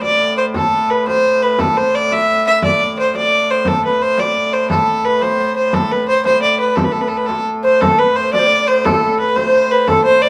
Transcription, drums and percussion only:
0.02 frame drum medium
0.20 frame drum soft
0.54 frame drum medium
1.07 frame drum medium
1.25 frame drum soft
1.59 frame drum medium
2.11 frame drum medium
2.29 frame drum soft
2.62 frame drum medium
2.80 frame drum soft
2.96 frame drum soft
3.14 frame drum medium
3.65 frame drum medium
4.18 frame drum medium
4.35 frame drum soft
4.70 frame drum medium
5.21 frame drum medium
5.39 frame drum soft
5.73 frame drum medium
6.25 frame drum medium
6.43 frame drum soft
6.77 frame drum medium
7.29 frame drum medium
7.64 frame drum soft
7.82 frame drum medium
8.33 frame drum medium
8.51 frame drum soft
8.85 frame drum medium
9.36 frame drum medium
9.54 frame drum soft
9.88 frame drum medium

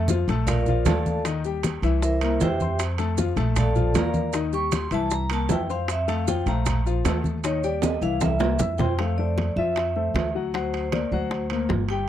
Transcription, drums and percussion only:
0.08 high bongo medium
0.08 high conga loud
0.08 low timbale medium
0.08 maracas medium
0.28 high timbale medium
0.28 maracas soft
0.47 high bongo medium
0.47 high conga soft
0.47 low conga medium
0.47 high timbale medium
0.47 maracas medium
0.66 high bongo soft
0.66 high conga soft
0.66 low conga medium
0.66 maracas soft
0.85 high bongo soft
0.85 low bongo medium
0.85 high conga medium
0.85 high timbale loud
0.85 low timbale loud
0.85 maracas medium
1.06 high conga medium
1.06 maracas soft
1.25 high bongo medium
1.25 high conga soft
1.25 high timbale medium
1.25 maracas medium
1.44 high bongo soft
1.44 high conga soft
1.44 maracas soft
1.63 high bongo medium
1.63 high conga medium
1.63 high timbale medium
1.63 low timbale medium
1.63 maracas medium
1.83 high conga soft
1.83 high timbale medium
1.83 maracas soft
2.02 high bongo medium
2.02 high conga soft
2.02 maracas medium
2.21 high bongo soft
2.21 high conga soft
2.21 high timbale medium
2.21 maracas soft
2.40 high bongo soft
2.40 low bongo medium
2.40 high conga medium
2.40 low timbale medium
2.40 maracas medium
2.60 high conga medium
2.60 maracas soft
2.79 high bongo medium
2.79 high timbale loud
2.79 maracas medium
2.98 high bongo soft
2.98 high conga soft
2.98 high timbale medium
2.98 maracas soft
3.18 high bongo medium
3.18 high conga medium
3.18 low timbale medium
3.18 maracas medium
3.37 high timbale medium
3.37 maracas soft
3.56 high bongo medium
3.56 high conga soft
3.56 low conga medium
3.56 high timbale medium
3.56 maracas medium
3.75 high bongo soft
3.75 high conga soft
3.75 low conga medium
3.75 maracas soft
3.95 high bongo soft
3.95 low bongo medium
3.95 high conga medium
3.95 high timbale loud
3.95 low timbale medium
3.95 maracas medium
4.14 high conga medium
4.14 maracas soft
4.33 high bongo medium
4.33 high timbale medium
4.33 maracas medium
4.53 high bongo soft
4.53 high conga soft
4.53 maracas soft
4.72 high bongo medium
4.72 high conga medium
4.72 high timbale loud
4.72 low timbale medium
4.72 maracas medium
4.91 high conga soft
4.91 high timbale medium
4.91 maracas soft
5.11 high bongo medium
5.11 high conga soft
5.11 maracas medium
5.30 high bongo soft
5.30 high conga soft
5.30 high timbale loud
5.30 maracas soft
5.49 high bongo soft
5.49 low bongo medium
5.49 high conga medium
5.49 low timbale medium
5.49 maracas medium
5.70 maracas soft
5.88 high bongo medium
5.88 high conga soft
5.88 high timbale medium
5.88 maracas medium
6.08 high bongo soft
6.08 high conga soft
6.08 high timbale medium
6.08 maracas soft
6.27 high bongo medium
6.27 high conga medium
6.27 low timbale medium
6.27 maracas medium
6.47 high timbale medium
6.47 maracas soft
6.66 high bongo medium
6.66 high conga soft
6.66 low conga medium
6.66 high timbale loud
6.66 maracas medium
6.86 high bongo soft
6.86 high conga soft
6.86 maracas soft
7.05 high bongo soft
7.05 low bongo medium
7.05 high conga medium
7.05 high timbale loud
7.05 low timbale medium
7.05 maracas medium
7.24 high conga medium
7.24 maracas soft
7.44 high bongo medium
7.44 high conga soft
7.44 high timbale medium
7.44 maracas medium
7.64 high bongo soft
7.64 high conga soft
7.64 maracas soft
7.82 high bongo medium
7.82 high conga loud
7.82 high timbale medium
7.82 maracas medium
8.02 high conga soft
8.02 maracas soft
8.21 high bongo medium
8.21 high conga loud
8.21 high timbale medium
8.21 maracas medium
8.40 high bongo loud
8.40 low timbale loud
8.40 maracas soft
8.59 low bongo medium
8.59 low conga medium
8.59 maracas medium
8.78 low bongo loud
8.78 low conga medium
8.78 low timbale medium
8.78 maracas soft
8.99 high bongo medium
8.99 high conga soft
8.99 high timbale medium
9.18 high conga soft
9.38 high bongo medium
9.38 high conga medium
9.38 high timbale medium
9.57 high conga soft
9.76 high bongo medium
9.76 high conga soft
9.76 high timbale medium
9.96 high conga soft
10.15 high bongo medium
10.15 low bongo medium
10.15 high conga medium
10.15 high timbale medium
10.15 low timbale medium
10.54 high bongo medium
10.54 high conga soft
10.54 high timbale medium
10.74 high bongo soft
10.74 high conga soft
10.74 high timbale medium
10.92 high bongo medium
10.92 high conga medium
10.92 high timbale medium
11.31 high bongo medium
11.31 high conga soft
11.31 high timbale medium
11.50 high bongo soft
11.50 high conga soft
11.50 high timbale medium
11.69 high bongo medium
11.69 low bongo medium
11.69 high conga medium
11.69 low timbale medium
11.88 high bongo soft
11.88 high timbale medium

